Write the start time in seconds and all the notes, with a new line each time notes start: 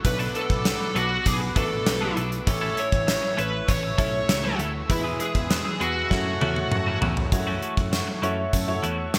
Already playing: F#5
0.03 B1 B2 F#3 A3 D4 F#4 B4 D6, muted clean electric guitar stroke, kick, closed hi-hat
0.08 B3
0.19 F#3 B3 D4 A4, closed hi-hat
0.34 F#3 B3 D4 A4, closed hi-hat
0.50 B1, muted clean electric guitar stroke, kick
0.65 muted clean electric guitar stroke, snare, closed hi-hat
0.80 muted clean electric guitar stroke
0.95 B1 F#3 B3 D4 F#4 A4, closed hi-hat
1.10 muted clean electric guitar stroke
1.25 B1 B2 F#3 B3 G#4, kick, closed hi-hat
1.41 muted clean electric guitar stroke
1.56 A1 F#3 A3 B3 D4 F#4 A4 B4, kick, closed hi-hat
1.71 muted clean electric guitar stroke
1.86 B1, muted clean electric guitar stroke, snare, closed hi-hat
2.01 F#3 B3 D4 A4
2.16 B1 F#3 B3 D4 A4, closed hi-hat
2.31 muted clean electric guitar stroke, closed hi-hat
2.45 A1 A2 E3 A3 C#4 E4 A4 C#5 E5 E6, muted clean electric guitar stroke, kick, closed hi-hat
2.51 A3
2.61 A3 C#4 E4 A4
2.76 A3 C#4 E4 A4 C#5, closed hi-hat
2.92 A1, muted clean electric guitar stroke, kick
3.07 muted clean electric guitar stroke, snare, closed hi-hat
3.22 muted clean electric guitar stroke
3.37 A1 A3 C#4 E4 A4 B4, closed hi-hat
3.53 muted clean electric guitar stroke
3.67 A1 A2 E3 A3 C#5, kick, closed hi-hat
3.83 muted clean electric guitar stroke
3.98 B1 A3 C#4 E4 A4 C#5, kick, closed hi-hat
4.13 muted clean electric guitar stroke
4.28 C#2, muted clean electric guitar stroke, snare, closed hi-hat
4.44 A3 C#4 E4 A4
4.58 D2 E3 A3 C#4 E4 A4, closed hi-hat
4.74 muted clean electric guitar stroke
4.88 E2 B2 E3 G#3 B3 E4 B4 G#5, muted clean electric guitar stroke, kick, closed hi-hat
4.93 E3
5.04 G#3 B3 E4 G#4
5.19 G#3 B3 E4 G#4, closed hi-hat
5.34 E2, muted clean electric guitar stroke, kick
5.50 muted clean electric guitar stroke, snare, closed hi-hat
5.65 muted clean electric guitar stroke
5.80 E2 G#3 B3 E4 F#4 G#4, closed hi-hat
6.10 F#2 C#3 F#3 A3 E4 F#4 C#5 F#5 A5, kick, snare
6.26 muted clean electric guitar stroke
6.41 E2 E3 A3 C#4 E4 F#4 C#5, high tom
6.56 muted clean electric guitar stroke, high tom
6.71 F#2, muted clean electric guitar stroke, mid tom
6.87 E3 A3 C#4 F#4
7.01 E2 C#3 E3 F#3 A3 C#4 F#4, floor tom
7.16 muted clean electric guitar stroke, floor tom
7.32 F#2 G#3 E4 F#4 A4 C#5 E5 F#5 C#6, muted clean electric guitar stroke, kick, closed hi-hat
7.38 A3
7.47 E3 A3 C#4 F#4
7.62 E3 A3 C#4 F#4, closed hi-hat
7.77 F#2, muted clean electric guitar stroke, kick
7.92 muted clean electric guitar stroke, snare, closed hi-hat
8.07 muted clean electric guitar stroke
8.22 F#2 E3 A3 C#4 E4 F#4 C#5, closed hi-hat
8.38 muted clean electric guitar stroke
8.53 F#2, kick, closed hi-hat
8.68 A3 E4 F#4 C#5, muted clean electric guitar stroke
8.83 E2 E3 A3 C#4 F#4, closed hi-hat
8.98 muted clean electric guitar stroke
9.14 F#2, muted clean electric guitar stroke, snare, closed hi-hat